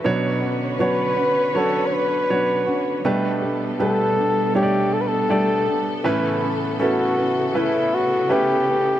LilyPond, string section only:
\new Staff \with { instrumentName = "String section" } { \time 4/4 \key g \lydian \tempo 4 = 80 << { <b' cis''>1 | <b a'>1~ | <b a'>1 | } \\ { d1 | <b, g>1 | cis1 | } >> }